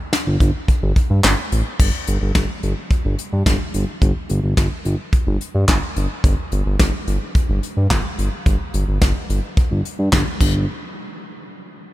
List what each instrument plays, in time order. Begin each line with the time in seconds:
0.13 snare, closed hi-hat
0.27 analog synth bass G1
0.40 analog synth bass G1, kick, closed hi-hat
0.68 kick, closed hi-hat
0.82 analog synth bass G1
0.96 kick, closed hi-hat
1.10 analog synth bass G2
1.24 analog synth bass G1, snare, clap, closed hi-hat
1.52 analog synth bass A1, closed hi-hat
1.79 analog synth bass G1, kick, crash
2.07 analog synth bass G1, closed hi-hat
2.21 analog synth bass G1
2.35 analog synth bass G1, kick, snare, closed hi-hat
2.63 analog synth bass G1, closed hi-hat
2.91 kick, closed hi-hat
3.05 analog synth bass G1
3.19 closed hi-hat
3.33 analog synth bass G2
3.46 analog synth bass G1, kick, snare, closed hi-hat
3.74 analog synth bass G1, closed hi-hat
4.02 analog synth bass G1, kick, closed hi-hat
4.29 analog synth bass G1, closed hi-hat
4.43 analog synth bass G1
4.57 analog synth bass G1, kick, snare, closed hi-hat
4.85 analog synth bass G1, closed hi-hat
5.13 kick, closed hi-hat
5.27 analog synth bass G1
5.41 closed hi-hat
5.55 analog synth bass G2
5.68 analog synth bass G1, kick, snare, clap, closed hi-hat
5.96 analog synth bass G1, closed hi-hat
6.24 analog synth bass G1, kick, closed hi-hat
6.52 analog synth bass G1, closed hi-hat
6.66 analog synth bass G1
6.79 analog synth bass G1, kick, snare, closed hi-hat
7.07 analog synth bass G1, closed hi-hat
7.35 kick, closed hi-hat
7.49 analog synth bass G1
7.63 closed hi-hat
7.77 analog synth bass G2
7.91 analog synth bass G1, kick, snare, clap, closed hi-hat
8.19 analog synth bass G1, closed hi-hat
8.46 analog synth bass G1, kick, closed hi-hat
8.74 analog synth bass G1, closed hi-hat
8.88 analog synth bass G1
9.02 analog synth bass G1, kick, snare, closed hi-hat
9.29 analog synth bass G1, closed hi-hat
9.57 kick, closed hi-hat
9.71 analog synth bass G1
9.85 closed hi-hat
9.99 analog synth bass G2
10.13 analog synth bass G1, kick, snare, clap, closed hi-hat
10.41 analog synth bass G1, kick, crash